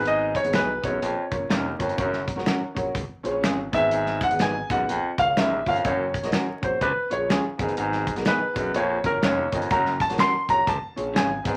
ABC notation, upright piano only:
X:1
M:4/4
L:1/16
Q:"Swing" 1/4=124
K:F#
V:1 name="Upright piano"
[B,DGB]2 z [B,DGB]2 z [B,DGB]2 z2 [CEAc]3 z [CEAc] z | [CFAc]2 z [CFAc]2 z [CFAc]2 z2 [CEG^Bc]3 z [D,=B,G=B]2- | [D,B,GB]2 z [B,DGB]2 z [B,DGB]2 z2 [CEAc]3 z [CEAc] z | [CFAc]2 z [CFAd]2 z [CFAc]2 z2 [CEGc]3 z [B,DGAB]2- |
[B,DGAB]2 z [B,DGA]2 z [B,DGB]2 z2 [CEAc]3 z [CEAd] z | [CFAc]2 z [CFAc]2 z [CFAc]2 z2 [CEGc]3 z [B,DGB]2 |]